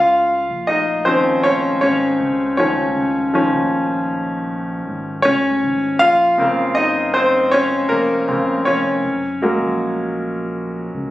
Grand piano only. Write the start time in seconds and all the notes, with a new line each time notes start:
Already playing: F4 F5
0.67 D#4 D#5
1.05 D#3 F3 C4 C#4 C5
1.43 C#4 C#5
1.81 C#4 C#5
2.57 D#3 F3 C#4 C#5
3.34 D#3 F3 C#4
5.22 C#4 C#5
5.99 F4 F5
6.38 C#3 A#3 C4
6.75 D#4 D#5
7.14 C4 C5
7.51 C#4 C#5
7.89 A#3 A#4
8.28 C#3 A#3 C4
8.65 C#4 C#5
9.42 F#3 G#3 A#3